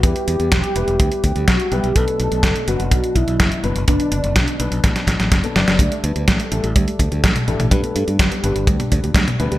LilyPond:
<<
  \new Staff \with { instrumentName = "Analog synth lead" } { \time 4/4 \key d \mixolydian \tempo 4 = 125 g'2. fis'8 g'8 | a'4. fis'4 e'4 r8 | d'4. r2 r8 | d''8 b'8 a'4 g'8 a'4. |
a'4 g'2~ g'8 r8 | }
  \new Staff \with { instrumentName = "Synth arpeggio sound" } { \time 4/4 \key d \mixolydian r1 | r1 | r1 | g16 a16 d'16 g'16 g16 a16 d'16 g'16 g16 a16 d'16 g'16 g16 a16 d'16 g'16 |
g16 b16 d'16 g'16 g16 b16 d'16 g'16 g16 b16 d'16 g'16 g16 b16 d'16 g'16 | }
  \new Staff \with { instrumentName = "Grand piano" } { \time 4/4 \key d \mixolydian <g b e' b'>4. <g b e' b'>2 <g b e' b'>16 r16 | <b, fis b d' b'>4. <b, fis b d' b'>2 <b, fis b d' b'>16 r16 | <b, fis b d' b'>4. <b, fis b d' b'>4.~ <b, fis b d' b'>16 <b, fis b d' a'>16 <fis b d' d''>8 | <d g a d' a'>4. <d g a d' a'>2 <g, g a d' a'>16 r16 |
<g, g b d' b'>4. <g, g b d' b'>2 <c g b d' b'>16 r16 | }
  \new Staff \with { instrumentName = "Fingered electric bass" } { \clef bass \time 4/4 \key d \mixolydian e,16 r16 e,16 e,16 e,,16 r16 e,,16 e,,16 d,16 r16 d,16 d,16 b,,16 r16 b,,16 b,,16 | b,,16 r16 b,,16 b,,16 fis,,16 r16 fis,,16 fis,,16 b,,16 r16 b,,16 b,,16 fis,,16 r16 fis,,16 fis,,16 | fis,,16 r16 fis,,16 fis,,16 b,,16 r16 b,,16 b,,16 a,,16 r16 a,,16 a,,16 fis,,16 r16 fis,,16 fis,,16 | d,16 r16 d,16 d,16 a,,16 r16 a,,16 a,,16 d,16 r16 d,16 d,16 a,,16 r16 a,,16 a,,16 |
g,16 r16 g,16 g,16 g,,16 r16 g,,16 g,,16 d,16 r16 d,16 d,16 d,16 r16 d,16 d,16 | }
  \new DrumStaff \with { instrumentName = "Drums" } \drummode { \time 4/4 <hh bd>16 hh16 hh16 hh16 <hh bd sn>16 hh16 hh16 hh16 <hh bd>16 hh16 <hh bd>16 hh16 <hh bd sn>16 hh16 hh16 hh16 | <hh bd>16 hh16 hh16 hh16 <hh bd sn>16 hh16 hh16 hh16 <hh bd>16 hh16 <hh bd>16 hh16 <hh bd sn>16 hh16 hh16 hh16 | <hh bd>16 hh16 hh16 hh16 <hh bd sn>16 hh16 hh16 hh16 <hh bd sn>16 <hh sn>16 <hh bd sn>16 <hh sn>16 <hh bd sn>16 hh16 <hh sn>16 <hh sn>16 | <hh bd>16 hh16 hh16 hh16 <hh bd sn>16 hh16 hh16 hh16 <hh bd>16 hh16 <hh bd>16 hh16 <hh bd sn>16 <hh tommh>16 hh16 <hh tommh>16 |
<hh bd>16 hh16 hh16 hh16 <hh bd sn>16 hh16 hh16 hh16 <hh bd>16 <hh tommh>16 <hh bd>16 hh16 <hh bd sn>16 <hh tommh>16 hh16 hh16 | }
>>